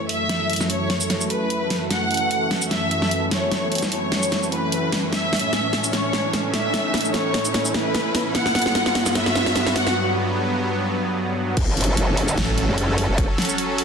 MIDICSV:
0, 0, Header, 1, 9, 480
1, 0, Start_track
1, 0, Tempo, 402685
1, 350, Time_signature, 4, 2, 24, 8
1, 16501, End_track
2, 0, Start_track
2, 0, Title_t, "Ambient pad"
2, 0, Program_c, 0, 92
2, 0, Note_on_c, 0, 61, 71
2, 0, Note_on_c, 0, 66, 83
2, 0, Note_on_c, 0, 76, 79
2, 0, Note_on_c, 0, 81, 81
2, 3184, Note_on_c, 0, 78, 89
2, 3333, Note_off_c, 0, 76, 0
2, 6243, Note_on_c, 0, 69, 92
2, 6310, Note_on_c, 0, 76, 87
2, 7026, Note_off_c, 0, 78, 0
2, 7632, Note_off_c, 0, 66, 0
2, 9949, Note_on_c, 0, 62, 67
2, 9951, Note_off_c, 0, 61, 0
2, 10529, Note_on_c, 0, 78, 76
2, 10599, Note_on_c, 0, 83, 78
2, 10874, Note_off_c, 0, 76, 0
2, 10978, Note_off_c, 0, 69, 0
2, 11495, Note_off_c, 0, 81, 0
2, 11870, Note_off_c, 0, 62, 0
2, 11871, Note_off_c, 0, 78, 0
2, 11871, Note_off_c, 0, 83, 0
2, 16501, End_track
3, 0, Start_track
3, 0, Title_t, "Violin section"
3, 0, Program_c, 1, 48
3, 111, Note_on_c, 1, 76, 91
3, 743, Note_off_c, 1, 76, 0
3, 831, Note_on_c, 1, 73, 90
3, 1463, Note_off_c, 1, 73, 0
3, 1550, Note_on_c, 1, 71, 90
3, 2183, Note_off_c, 1, 71, 0
3, 2271, Note_on_c, 1, 78, 99
3, 3143, Note_off_c, 1, 78, 0
3, 3230, Note_on_c, 1, 76, 93
3, 3863, Note_off_c, 1, 76, 0
3, 3950, Note_on_c, 1, 73, 90
3, 4583, Note_off_c, 1, 73, 0
3, 4670, Note_on_c, 1, 73, 92
3, 5303, Note_off_c, 1, 73, 0
3, 5389, Note_on_c, 1, 71, 95
3, 6022, Note_off_c, 1, 71, 0
3, 6109, Note_on_c, 1, 76, 100
3, 6982, Note_off_c, 1, 76, 0
3, 7069, Note_on_c, 1, 73, 92
3, 7702, Note_off_c, 1, 73, 0
3, 7789, Note_on_c, 1, 76, 98
3, 8422, Note_off_c, 1, 76, 0
3, 8510, Note_on_c, 1, 73, 98
3, 9142, Note_off_c, 1, 73, 0
3, 9230, Note_on_c, 1, 71, 98
3, 9863, Note_off_c, 1, 71, 0
3, 9949, Note_on_c, 1, 78, 100
3, 10822, Note_off_c, 1, 78, 0
3, 10910, Note_on_c, 1, 76, 99
3, 11543, Note_off_c, 1, 76, 0
3, 11630, Note_on_c, 1, 78, 95
3, 11870, Note_off_c, 1, 78, 0
3, 16501, End_track
4, 0, Start_track
4, 0, Title_t, "Supersaw synth"
4, 0, Program_c, 2, 81
4, 0, Note_on_c, 2, 42, 85
4, 0, Note_on_c, 2, 52, 77
4, 0, Note_on_c, 2, 57, 94
4, 6063, Note_off_c, 2, 42, 0
4, 6063, Note_off_c, 2, 57, 0
4, 6110, Note_on_c, 2, 45, 90
4, 6110, Note_on_c, 2, 61, 95
4, 9903, Note_off_c, 2, 52, 0
4, 9912, Note_off_c, 2, 45, 0
4, 9912, Note_off_c, 2, 61, 0
4, 9949, Note_on_c, 2, 43, 89
4, 9950, Note_on_c, 2, 54, 78
4, 9950, Note_on_c, 2, 59, 97
4, 13752, Note_off_c, 2, 43, 0
4, 13752, Note_off_c, 2, 54, 0
4, 13752, Note_off_c, 2, 59, 0
4, 13790, Note_on_c, 2, 54, 86
4, 13790, Note_on_c, 2, 69, 92
4, 13791, Note_on_c, 2, 61, 79
4, 16501, Note_off_c, 2, 54, 0
4, 16501, Note_off_c, 2, 61, 0
4, 16501, Note_off_c, 2, 69, 0
4, 16501, End_track
5, 0, Start_track
5, 0, Title_t, "Detuned saw bass"
5, 0, Program_c, 3, 39
5, 14751, Note_on_c, 3, 33, 97
5, 15100, Note_off_c, 3, 33, 0
5, 16501, End_track
6, 0, Start_track
6, 0, Title_t, "Wobble bass"
6, 0, Program_c, 4, 39
6, 13790, Note_on_c, 4, 30, 94
6, 14253, Note_off_c, 4, 30, 0
6, 14271, Note_on_c, 4, 30, 101
6, 14733, Note_off_c, 4, 30, 0
6, 15121, Note_on_c, 4, 42, 101
6, 15580, Note_off_c, 4, 42, 0
6, 15601, Note_on_c, 4, 30, 95
6, 15820, Note_off_c, 4, 30, 0
6, 16501, End_track
7, 0, Start_track
7, 0, Title_t, "Impact"
7, 0, Program_c, 5, 103
7, 13791, Note_on_c, 5, 60, 79
7, 15711, Note_off_c, 5, 60, 0
7, 16501, End_track
8, 0, Start_track
8, 0, Title_t, "Riser"
8, 0, Program_c, 6, 103
8, 0, Note_on_c, 6, 60, 80
8, 11871, Note_off_c, 6, 60, 0
8, 16501, End_track
9, 0, Start_track
9, 0, Title_t, "Drums"
9, 111, Note_on_c, 9, 46, 91
9, 230, Note_off_c, 9, 46, 0
9, 351, Note_on_c, 9, 38, 50
9, 351, Note_on_c, 9, 42, 76
9, 470, Note_off_c, 9, 38, 0
9, 470, Note_off_c, 9, 42, 0
9, 591, Note_on_c, 9, 42, 51
9, 634, Note_off_c, 9, 42, 0
9, 634, Note_on_c, 9, 42, 68
9, 671, Note_off_c, 9, 42, 0
9, 671, Note_on_c, 9, 42, 83
9, 722, Note_on_c, 9, 38, 49
9, 722, Note_on_c, 9, 82, 60
9, 790, Note_off_c, 9, 42, 0
9, 831, Note_on_c, 9, 42, 80
9, 841, Note_off_c, 9, 38, 0
9, 841, Note_off_c, 9, 82, 0
9, 950, Note_off_c, 9, 42, 0
9, 1071, Note_on_c, 9, 38, 56
9, 1071, Note_on_c, 9, 46, 62
9, 1190, Note_off_c, 9, 38, 0
9, 1190, Note_off_c, 9, 46, 0
9, 1201, Note_on_c, 9, 42, 40
9, 1201, Note_on_c, 9, 82, 76
9, 1311, Note_off_c, 9, 42, 0
9, 1311, Note_on_c, 9, 38, 52
9, 1311, Note_on_c, 9, 42, 85
9, 1321, Note_off_c, 9, 82, 0
9, 1430, Note_off_c, 9, 38, 0
9, 1430, Note_off_c, 9, 42, 0
9, 1442, Note_on_c, 9, 82, 54
9, 1551, Note_on_c, 9, 42, 55
9, 1561, Note_off_c, 9, 82, 0
9, 1670, Note_off_c, 9, 42, 0
9, 1791, Note_on_c, 9, 42, 79
9, 1910, Note_off_c, 9, 42, 0
9, 2031, Note_on_c, 9, 38, 55
9, 2031, Note_on_c, 9, 46, 89
9, 2150, Note_off_c, 9, 38, 0
9, 2150, Note_off_c, 9, 46, 0
9, 2271, Note_on_c, 9, 38, 57
9, 2271, Note_on_c, 9, 42, 80
9, 2390, Note_off_c, 9, 38, 0
9, 2390, Note_off_c, 9, 42, 0
9, 2511, Note_on_c, 9, 42, 49
9, 2554, Note_off_c, 9, 42, 0
9, 2554, Note_on_c, 9, 42, 66
9, 2591, Note_off_c, 9, 42, 0
9, 2591, Note_on_c, 9, 42, 77
9, 2710, Note_off_c, 9, 42, 0
9, 2751, Note_on_c, 9, 42, 80
9, 2870, Note_off_c, 9, 42, 0
9, 2991, Note_on_c, 9, 38, 67
9, 2991, Note_on_c, 9, 46, 59
9, 3110, Note_off_c, 9, 38, 0
9, 3110, Note_off_c, 9, 46, 0
9, 3121, Note_on_c, 9, 42, 38
9, 3121, Note_on_c, 9, 82, 80
9, 3231, Note_off_c, 9, 42, 0
9, 3231, Note_on_c, 9, 38, 63
9, 3231, Note_on_c, 9, 42, 81
9, 3241, Note_off_c, 9, 82, 0
9, 3350, Note_off_c, 9, 38, 0
9, 3350, Note_off_c, 9, 42, 0
9, 3471, Note_on_c, 9, 42, 53
9, 3590, Note_off_c, 9, 42, 0
9, 3601, Note_on_c, 9, 38, 55
9, 3711, Note_on_c, 9, 42, 83
9, 3720, Note_off_c, 9, 38, 0
9, 3830, Note_off_c, 9, 42, 0
9, 3951, Note_on_c, 9, 38, 64
9, 3951, Note_on_c, 9, 46, 89
9, 4070, Note_off_c, 9, 38, 0
9, 4070, Note_off_c, 9, 46, 0
9, 4190, Note_on_c, 9, 38, 63
9, 4190, Note_on_c, 9, 42, 76
9, 4309, Note_off_c, 9, 38, 0
9, 4309, Note_off_c, 9, 42, 0
9, 4430, Note_on_c, 9, 42, 47
9, 4474, Note_off_c, 9, 42, 0
9, 4474, Note_on_c, 9, 42, 62
9, 4510, Note_off_c, 9, 42, 0
9, 4510, Note_on_c, 9, 42, 79
9, 4560, Note_on_c, 9, 38, 62
9, 4560, Note_on_c, 9, 82, 62
9, 4629, Note_off_c, 9, 42, 0
9, 4670, Note_on_c, 9, 42, 79
9, 4679, Note_off_c, 9, 38, 0
9, 4679, Note_off_c, 9, 82, 0
9, 4789, Note_off_c, 9, 42, 0
9, 4910, Note_on_c, 9, 38, 70
9, 4910, Note_on_c, 9, 46, 61
9, 5029, Note_off_c, 9, 38, 0
9, 5029, Note_off_c, 9, 46, 0
9, 5040, Note_on_c, 9, 42, 37
9, 5040, Note_on_c, 9, 82, 79
9, 5150, Note_off_c, 9, 42, 0
9, 5150, Note_on_c, 9, 38, 68
9, 5150, Note_on_c, 9, 42, 79
9, 5159, Note_off_c, 9, 82, 0
9, 5269, Note_off_c, 9, 38, 0
9, 5269, Note_off_c, 9, 42, 0
9, 5280, Note_on_c, 9, 82, 56
9, 5390, Note_on_c, 9, 42, 53
9, 5400, Note_off_c, 9, 82, 0
9, 5509, Note_off_c, 9, 42, 0
9, 5630, Note_on_c, 9, 42, 80
9, 5749, Note_off_c, 9, 42, 0
9, 5870, Note_on_c, 9, 38, 73
9, 5870, Note_on_c, 9, 46, 88
9, 5989, Note_off_c, 9, 38, 0
9, 5989, Note_off_c, 9, 46, 0
9, 6110, Note_on_c, 9, 38, 72
9, 6110, Note_on_c, 9, 42, 72
9, 6229, Note_off_c, 9, 38, 0
9, 6229, Note_off_c, 9, 42, 0
9, 6350, Note_on_c, 9, 38, 77
9, 6350, Note_on_c, 9, 42, 45
9, 6394, Note_off_c, 9, 42, 0
9, 6394, Note_on_c, 9, 42, 62
9, 6430, Note_off_c, 9, 42, 0
9, 6430, Note_on_c, 9, 42, 80
9, 6469, Note_off_c, 9, 38, 0
9, 6550, Note_off_c, 9, 42, 0
9, 6590, Note_on_c, 9, 38, 77
9, 6590, Note_on_c, 9, 42, 75
9, 6709, Note_off_c, 9, 38, 0
9, 6709, Note_off_c, 9, 42, 0
9, 6830, Note_on_c, 9, 38, 80
9, 6830, Note_on_c, 9, 46, 62
9, 6950, Note_off_c, 9, 38, 0
9, 6950, Note_off_c, 9, 46, 0
9, 6961, Note_on_c, 9, 42, 35
9, 6961, Note_on_c, 9, 82, 84
9, 7070, Note_off_c, 9, 42, 0
9, 7070, Note_on_c, 9, 38, 80
9, 7070, Note_on_c, 9, 42, 78
9, 7080, Note_off_c, 9, 82, 0
9, 7190, Note_off_c, 9, 38, 0
9, 7190, Note_off_c, 9, 42, 0
9, 7311, Note_on_c, 9, 38, 82
9, 7311, Note_on_c, 9, 42, 52
9, 7430, Note_off_c, 9, 38, 0
9, 7430, Note_off_c, 9, 42, 0
9, 7551, Note_on_c, 9, 38, 85
9, 7551, Note_on_c, 9, 42, 78
9, 7670, Note_off_c, 9, 38, 0
9, 7670, Note_off_c, 9, 42, 0
9, 7791, Note_on_c, 9, 38, 80
9, 7791, Note_on_c, 9, 46, 85
9, 7910, Note_off_c, 9, 38, 0
9, 7910, Note_off_c, 9, 46, 0
9, 8031, Note_on_c, 9, 38, 82
9, 8031, Note_on_c, 9, 42, 78
9, 8150, Note_off_c, 9, 38, 0
9, 8150, Note_off_c, 9, 42, 0
9, 8271, Note_on_c, 9, 38, 86
9, 8271, Note_on_c, 9, 42, 46
9, 8314, Note_off_c, 9, 42, 0
9, 8314, Note_on_c, 9, 42, 62
9, 8351, Note_off_c, 9, 42, 0
9, 8351, Note_on_c, 9, 42, 76
9, 8390, Note_off_c, 9, 38, 0
9, 8401, Note_on_c, 9, 82, 64
9, 8470, Note_off_c, 9, 42, 0
9, 8511, Note_on_c, 9, 38, 84
9, 8511, Note_on_c, 9, 42, 73
9, 8520, Note_off_c, 9, 82, 0
9, 8630, Note_off_c, 9, 38, 0
9, 8630, Note_off_c, 9, 42, 0
9, 8751, Note_on_c, 9, 38, 92
9, 8751, Note_on_c, 9, 46, 64
9, 8870, Note_off_c, 9, 38, 0
9, 8870, Note_off_c, 9, 46, 0
9, 8881, Note_on_c, 9, 42, 36
9, 8881, Note_on_c, 9, 82, 88
9, 8991, Note_off_c, 9, 42, 0
9, 8991, Note_on_c, 9, 38, 92
9, 8991, Note_on_c, 9, 42, 75
9, 9000, Note_off_c, 9, 82, 0
9, 9110, Note_off_c, 9, 38, 0
9, 9110, Note_off_c, 9, 42, 0
9, 9121, Note_on_c, 9, 82, 62
9, 9231, Note_on_c, 9, 38, 89
9, 9231, Note_on_c, 9, 42, 51
9, 9240, Note_off_c, 9, 82, 0
9, 9350, Note_off_c, 9, 38, 0
9, 9350, Note_off_c, 9, 42, 0
9, 9471, Note_on_c, 9, 38, 92
9, 9471, Note_on_c, 9, 42, 77
9, 9590, Note_off_c, 9, 38, 0
9, 9590, Note_off_c, 9, 42, 0
9, 9711, Note_on_c, 9, 38, 93
9, 9711, Note_on_c, 9, 46, 95
9, 9830, Note_off_c, 9, 38, 0
9, 9830, Note_off_c, 9, 46, 0
9, 9951, Note_on_c, 9, 38, 88
9, 9951, Note_on_c, 9, 42, 78
9, 10070, Note_off_c, 9, 38, 0
9, 10070, Note_off_c, 9, 42, 0
9, 10081, Note_on_c, 9, 38, 80
9, 10191, Note_off_c, 9, 38, 0
9, 10191, Note_on_c, 9, 38, 95
9, 10191, Note_on_c, 9, 42, 50
9, 10235, Note_off_c, 9, 42, 0
9, 10235, Note_on_c, 9, 42, 61
9, 10271, Note_off_c, 9, 42, 0
9, 10271, Note_on_c, 9, 42, 79
9, 10311, Note_off_c, 9, 38, 0
9, 10322, Note_on_c, 9, 38, 83
9, 10390, Note_off_c, 9, 42, 0
9, 10431, Note_off_c, 9, 38, 0
9, 10431, Note_on_c, 9, 38, 92
9, 10431, Note_on_c, 9, 42, 75
9, 10550, Note_off_c, 9, 38, 0
9, 10550, Note_off_c, 9, 42, 0
9, 10562, Note_on_c, 9, 38, 85
9, 10671, Note_off_c, 9, 38, 0
9, 10671, Note_on_c, 9, 38, 103
9, 10671, Note_on_c, 9, 46, 65
9, 10790, Note_off_c, 9, 38, 0
9, 10790, Note_off_c, 9, 46, 0
9, 10801, Note_on_c, 9, 38, 88
9, 10801, Note_on_c, 9, 42, 38
9, 10801, Note_on_c, 9, 82, 87
9, 10911, Note_off_c, 9, 38, 0
9, 10911, Note_off_c, 9, 42, 0
9, 10911, Note_on_c, 9, 38, 96
9, 10911, Note_on_c, 9, 42, 79
9, 10921, Note_off_c, 9, 82, 0
9, 11030, Note_off_c, 9, 38, 0
9, 11030, Note_off_c, 9, 42, 0
9, 11041, Note_on_c, 9, 38, 85
9, 11151, Note_off_c, 9, 38, 0
9, 11151, Note_on_c, 9, 38, 102
9, 11151, Note_on_c, 9, 42, 52
9, 11270, Note_off_c, 9, 38, 0
9, 11270, Note_off_c, 9, 42, 0
9, 11281, Note_on_c, 9, 38, 88
9, 11391, Note_off_c, 9, 38, 0
9, 11391, Note_on_c, 9, 38, 99
9, 11391, Note_on_c, 9, 42, 79
9, 11510, Note_off_c, 9, 38, 0
9, 11510, Note_off_c, 9, 42, 0
9, 11521, Note_on_c, 9, 38, 88
9, 11631, Note_off_c, 9, 38, 0
9, 11631, Note_on_c, 9, 38, 103
9, 11631, Note_on_c, 9, 46, 91
9, 11750, Note_off_c, 9, 38, 0
9, 11750, Note_off_c, 9, 46, 0
9, 11761, Note_on_c, 9, 38, 88
9, 11880, Note_off_c, 9, 38, 0
9, 13790, Note_on_c, 9, 42, 83
9, 13790, Note_on_c, 9, 49, 103
9, 13791, Note_on_c, 9, 36, 118
9, 13910, Note_off_c, 9, 36, 0
9, 13910, Note_off_c, 9, 42, 0
9, 13910, Note_off_c, 9, 49, 0
9, 14030, Note_on_c, 9, 42, 53
9, 14074, Note_off_c, 9, 42, 0
9, 14074, Note_on_c, 9, 42, 66
9, 14111, Note_off_c, 9, 42, 0
9, 14111, Note_on_c, 9, 42, 89
9, 14230, Note_off_c, 9, 42, 0
9, 14271, Note_on_c, 9, 42, 84
9, 14390, Note_off_c, 9, 42, 0
9, 14511, Note_on_c, 9, 46, 70
9, 14630, Note_off_c, 9, 46, 0
9, 14641, Note_on_c, 9, 42, 39
9, 14641, Note_on_c, 9, 82, 81
9, 14751, Note_off_c, 9, 42, 0
9, 14751, Note_on_c, 9, 38, 126
9, 14751, Note_on_c, 9, 42, 85
9, 14761, Note_off_c, 9, 82, 0
9, 14870, Note_off_c, 9, 38, 0
9, 14870, Note_off_c, 9, 42, 0
9, 14991, Note_on_c, 9, 42, 55
9, 15110, Note_off_c, 9, 42, 0
9, 15231, Note_on_c, 9, 42, 87
9, 15350, Note_off_c, 9, 42, 0
9, 15471, Note_on_c, 9, 46, 95
9, 15590, Note_off_c, 9, 46, 0
9, 15711, Note_on_c, 9, 36, 127
9, 15711, Note_on_c, 9, 42, 83
9, 15830, Note_off_c, 9, 36, 0
9, 15830, Note_off_c, 9, 42, 0
9, 15951, Note_on_c, 9, 38, 63
9, 15951, Note_on_c, 9, 42, 52
9, 15995, Note_off_c, 9, 42, 0
9, 15995, Note_on_c, 9, 42, 68
9, 16031, Note_off_c, 9, 42, 0
9, 16031, Note_on_c, 9, 42, 86
9, 16070, Note_off_c, 9, 38, 0
9, 16081, Note_on_c, 9, 82, 61
9, 16150, Note_off_c, 9, 42, 0
9, 16191, Note_on_c, 9, 42, 85
9, 16200, Note_off_c, 9, 82, 0
9, 16310, Note_off_c, 9, 42, 0
9, 16431, Note_on_c, 9, 46, 68
9, 16501, Note_off_c, 9, 46, 0
9, 16501, End_track
0, 0, End_of_file